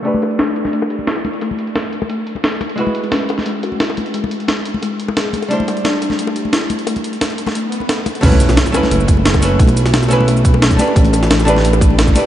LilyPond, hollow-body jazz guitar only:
\new Staff \with { instrumentName = "Hollow-body jazz guitar" } { \time 4/4 \key b \minor \tempo 4 = 176 <a d' g' b'>1~ | <a d' g' b'>1 | <gis e' fis' b'>1~ | <gis e' fis' b'>1 |
<g d' e' c''>1~ | <g d' e' c''>1 | <a cis' e' b'>4. <a cis' e' b'>2 <a cis' e' b'>8~ | <a cis' e' b'>4. <a cis' e' b'>2 <a d' g' b'>8~ |
<a d' g' b'>4. <a d' g' b'>2 <a d' g' b'>8 | }